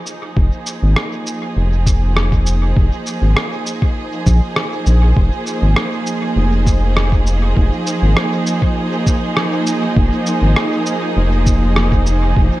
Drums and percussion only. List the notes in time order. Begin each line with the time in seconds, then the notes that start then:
0.07 shaker
0.37 kick
0.66 shaker
0.96 cross-stick
1.27 shaker
1.87 kick, shaker
2.17 cross-stick
2.32 kick
2.46 shaker
2.77 kick
3.06 shaker
3.37 cross-stick
3.66 shaker
3.82 kick
4.26 kick, shaker
4.56 cross-stick
4.86 shaker
5.17 kick
5.47 shaker
5.76 cross-stick
6.07 shaker
6.67 kick, shaker
6.97 cross-stick
7.12 kick
7.27 shaker
7.57 kick
7.87 shaker
8.17 cross-stick
8.47 shaker
8.62 kick
9.07 kick, shaker
9.37 cross-stick
9.67 shaker
9.97 kick
10.26 shaker
10.56 cross-stick
10.86 shaker
11.46 kick, shaker
11.76 cross-stick
11.92 kick
12.06 shaker
12.37 kick